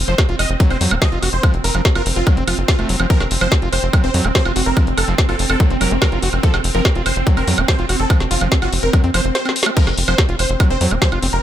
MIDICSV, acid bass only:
0, 0, Header, 1, 2, 480
1, 0, Start_track
1, 0, Tempo, 416667
1, 1651, Time_signature, 4, 2, 24, 8
1, 13163, End_track
2, 0, Start_track
2, 0, Title_t, "Acid bass"
2, 0, Program_c, 0, 38
2, 91, Note_on_c, 0, 53, 76
2, 171, Note_off_c, 0, 53, 0
2, 331, Note_on_c, 0, 65, 79
2, 411, Note_off_c, 0, 65, 0
2, 691, Note_on_c, 0, 54, 102
2, 805, Note_off_c, 0, 54, 0
2, 811, Note_on_c, 0, 60, 77
2, 891, Note_off_c, 0, 60, 0
2, 931, Note_on_c, 0, 54, 77
2, 1051, Note_on_c, 0, 60, 76
2, 1068, Note_off_c, 0, 54, 0
2, 1099, Note_off_c, 0, 60, 0
2, 1171, Note_on_c, 0, 53, 107
2, 1251, Note_off_c, 0, 53, 0
2, 1291, Note_on_c, 0, 65, 82
2, 1371, Note_off_c, 0, 65, 0
2, 1411, Note_on_c, 0, 66, 77
2, 1491, Note_off_c, 0, 66, 0
2, 1651, Note_on_c, 0, 53, 104
2, 1765, Note_off_c, 0, 53, 0
2, 2012, Note_on_c, 0, 53, 78
2, 2091, Note_off_c, 0, 53, 0
2, 2251, Note_on_c, 0, 65, 75
2, 2331, Note_off_c, 0, 65, 0
2, 2611, Note_on_c, 0, 54, 96
2, 2725, Note_off_c, 0, 54, 0
2, 2732, Note_on_c, 0, 60, 78
2, 2811, Note_off_c, 0, 60, 0
2, 2851, Note_on_c, 0, 53, 77
2, 2931, Note_off_c, 0, 53, 0
2, 3211, Note_on_c, 0, 57, 99
2, 3325, Note_off_c, 0, 57, 0
2, 3331, Note_on_c, 0, 54, 80
2, 3411, Note_off_c, 0, 54, 0
2, 3451, Note_on_c, 0, 53, 82
2, 3531, Note_off_c, 0, 53, 0
2, 3572, Note_on_c, 0, 53, 102
2, 3685, Note_off_c, 0, 53, 0
2, 3931, Note_on_c, 0, 53, 76
2, 4010, Note_off_c, 0, 53, 0
2, 4171, Note_on_c, 0, 65, 76
2, 4251, Note_off_c, 0, 65, 0
2, 4531, Note_on_c, 0, 54, 100
2, 4645, Note_off_c, 0, 54, 0
2, 4651, Note_on_c, 0, 60, 77
2, 4731, Note_off_c, 0, 60, 0
2, 4771, Note_on_c, 0, 54, 78
2, 4891, Note_on_c, 0, 60, 78
2, 4909, Note_off_c, 0, 54, 0
2, 4939, Note_off_c, 0, 60, 0
2, 5011, Note_on_c, 0, 53, 105
2, 5091, Note_off_c, 0, 53, 0
2, 5131, Note_on_c, 0, 65, 79
2, 5211, Note_off_c, 0, 65, 0
2, 5251, Note_on_c, 0, 66, 82
2, 5331, Note_off_c, 0, 66, 0
2, 5491, Note_on_c, 0, 53, 99
2, 5605, Note_off_c, 0, 53, 0
2, 5851, Note_on_c, 0, 53, 76
2, 5931, Note_off_c, 0, 53, 0
2, 6092, Note_on_c, 0, 65, 74
2, 6171, Note_off_c, 0, 65, 0
2, 6451, Note_on_c, 0, 54, 103
2, 6565, Note_off_c, 0, 54, 0
2, 6571, Note_on_c, 0, 60, 76
2, 6651, Note_off_c, 0, 60, 0
2, 6691, Note_on_c, 0, 54, 76
2, 6811, Note_on_c, 0, 60, 78
2, 6829, Note_off_c, 0, 54, 0
2, 6859, Note_off_c, 0, 60, 0
2, 6931, Note_on_c, 0, 53, 104
2, 7010, Note_off_c, 0, 53, 0
2, 7051, Note_on_c, 0, 65, 77
2, 7131, Note_off_c, 0, 65, 0
2, 7171, Note_on_c, 0, 66, 80
2, 7251, Note_off_c, 0, 66, 0
2, 7411, Note_on_c, 0, 53, 102
2, 7525, Note_off_c, 0, 53, 0
2, 7771, Note_on_c, 0, 53, 76
2, 7851, Note_off_c, 0, 53, 0
2, 8012, Note_on_c, 0, 65, 75
2, 8091, Note_off_c, 0, 65, 0
2, 8371, Note_on_c, 0, 54, 97
2, 8485, Note_off_c, 0, 54, 0
2, 8491, Note_on_c, 0, 60, 78
2, 8571, Note_off_c, 0, 60, 0
2, 8611, Note_on_c, 0, 54, 78
2, 8731, Note_on_c, 0, 60, 75
2, 8748, Note_off_c, 0, 54, 0
2, 8779, Note_off_c, 0, 60, 0
2, 8851, Note_on_c, 0, 53, 104
2, 8930, Note_off_c, 0, 53, 0
2, 8971, Note_on_c, 0, 65, 76
2, 9051, Note_off_c, 0, 65, 0
2, 9091, Note_on_c, 0, 66, 79
2, 9171, Note_off_c, 0, 66, 0
2, 9331, Note_on_c, 0, 53, 104
2, 9445, Note_off_c, 0, 53, 0
2, 9691, Note_on_c, 0, 53, 76
2, 9770, Note_off_c, 0, 53, 0
2, 9931, Note_on_c, 0, 65, 78
2, 10011, Note_off_c, 0, 65, 0
2, 10291, Note_on_c, 0, 54, 94
2, 10405, Note_off_c, 0, 54, 0
2, 10412, Note_on_c, 0, 60, 76
2, 10491, Note_off_c, 0, 60, 0
2, 10532, Note_on_c, 0, 53, 78
2, 10611, Note_off_c, 0, 53, 0
2, 10892, Note_on_c, 0, 60, 80
2, 10971, Note_off_c, 0, 60, 0
2, 11132, Note_on_c, 0, 57, 84
2, 11179, Note_off_c, 0, 57, 0
2, 11252, Note_on_c, 0, 53, 100
2, 11366, Note_off_c, 0, 53, 0
2, 11612, Note_on_c, 0, 53, 74
2, 11691, Note_off_c, 0, 53, 0
2, 11852, Note_on_c, 0, 65, 76
2, 11931, Note_off_c, 0, 65, 0
2, 12212, Note_on_c, 0, 54, 101
2, 12326, Note_off_c, 0, 54, 0
2, 12332, Note_on_c, 0, 60, 78
2, 12411, Note_off_c, 0, 60, 0
2, 12452, Note_on_c, 0, 54, 80
2, 12572, Note_on_c, 0, 60, 79
2, 12589, Note_off_c, 0, 54, 0
2, 12619, Note_off_c, 0, 60, 0
2, 12691, Note_on_c, 0, 53, 102
2, 12771, Note_off_c, 0, 53, 0
2, 12811, Note_on_c, 0, 65, 80
2, 12891, Note_off_c, 0, 65, 0
2, 12932, Note_on_c, 0, 60, 80
2, 12979, Note_off_c, 0, 60, 0
2, 13163, End_track
0, 0, End_of_file